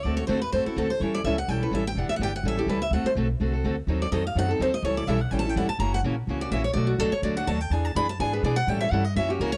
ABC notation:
X:1
M:4/4
L:1/8
Q:"Swing" 1/4=250
K:Amix
V:1 name="Steel-string acoustic guitar"
d c =c B c E A c | c d e f g B e g | (3f e f g f e G B e | f =c z6 |
z d ^d =f ^f A ^B d | c d e f (3g a g f a | ^a f z3 d e c | d F A c d f a g |
^g a b a g B d f | g e f ^d e G ^A c |]
V:2 name="Steel-string acoustic guitar"
[D,A,=CFA] z [D,A,CFA] z [D,A,CFA] [CFA] [D,A,CFA] z | [E,G,CEA] z [E,G,CEA] z [E,G,CEA] [CEA] [E,G,CEA] z | [E,B,DG] z [E,B,DG] z [E,G,CEA] [CEA] [E,G,CEA] z | [D,A,=CFA] z [D,A,CFA] z [D,A,CFA] [CFA] [D,A,CFA] z |
[^D,F,^B,^DA] z [D,F,B,DA] z [D,F,B,DA] [B,DA] [D,F,B,DA] z | [E,G,CEA] z [E,G,CEA] z [E,G,CEA] [CEA] [E,G,CEA] z | [C,E,^A,CF] z [C,E,A,CF] z [C,E,A,CF] [A,CF] [C,E,A,CF] z | [B,,F,A,DF] z [B,,F,A,DF] z [B,,F,A,DF] [A,DF] [B,,F,A,DF] z |
[E,B,D^G] z [E,B,DG] z [E,B,DG] [B,DG] [E,B,DG] z | [E,G,CEA] z [E,G,CEA] z [C,E,^A,CF] [A,CF] [C,E,A,CF] z |]
V:3 name="Upright bass" clef=bass
D,,2 E,,2 F,, z D,,2 | E,,2 C,,2 B,,,2 A,,,2 | E,,, z G,,,2 A,,,2 C,,2 | D,, z B,,,2 =C,,2 D,,2 |
^D,,2 =F,,2 ^F,,2 D,,2 | C,,2 B,,,2 A,,,2 G,,, z | F,,,2 ^A,,,2 C,,2 A,,,2 | B,,,2 C,, z D,,2 ^D,,2 |
E,,2 F,,2 ^G,,2 B,,2 | A,,2 G,,2 F,,2 C,,2 |]